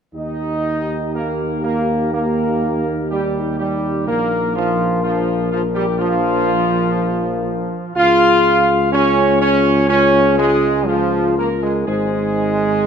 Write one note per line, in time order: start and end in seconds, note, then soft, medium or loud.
0.14 4.09 D#2 medium
0.14 5.00 D#4 medium
0.14 1.10 D#4 medium
0.14 4.03 G4 medium
0.14 1.09 D#5 medium
1.14 1.60 A#3 medium
1.14 1.60 A#4 medium
1.63 2.09 A#3 medium
1.63 2.10 A#4 medium
2.13 3.06 A#3 medium
2.13 3.06 A#4 medium
3.10 3.55 G3 medium
3.10 3.55 G4 medium
3.59 4.04 G3 medium
3.59 4.04 G4 medium
4.07 7.79 A#1 medium
4.07 4.53 A#3 medium
4.07 4.52 A#4 medium
4.07 7.79 A#4 medium
4.55 5.00 F3 medium
4.55 5.00 F4 medium
5.03 5.48 F3 medium
5.03 7.79 D4 medium
5.03 5.48 F4 medium
5.50 5.62 F3 medium
5.50 5.61 F4 medium
5.74 5.85 G3 medium
5.74 5.97 G4 medium
5.98 7.91 F3 loud
5.98 7.91 F4 loud
7.95 11.83 C#2 medium
7.95 8.88 F4 loud
7.95 8.88 F4 medium
7.95 8.89 G#4 medium
7.95 8.88 F5 loud
8.92 9.37 C#4 loud
8.92 9.85 F4 medium
8.92 9.85 G#4 medium
8.92 9.37 C#5 loud
9.40 9.86 C#4 loud
9.40 9.85 C#5 loud
9.89 10.34 C#4 loud
9.89 10.83 F4 medium
9.89 10.83 G#4 medium
9.89 10.35 C#5 loud
10.37 10.83 G#3 loud
10.37 10.84 G#4 medium
10.86 11.36 F3 loud
10.86 11.83 F4 medium
10.86 11.33 F4 medium
10.86 11.33 G#4 medium
11.37 11.48 A#3 medium
11.37 11.84 A#4 medium
11.37 11.60 A#4 medium
11.62 11.85 G#3 medium
11.62 11.74 G#4 medium
11.86 12.87 G#1 medium
11.86 12.87 G#3 medium
11.86 12.77 D#4 medium
11.86 12.87 G#4 medium
11.86 12.73 C5 medium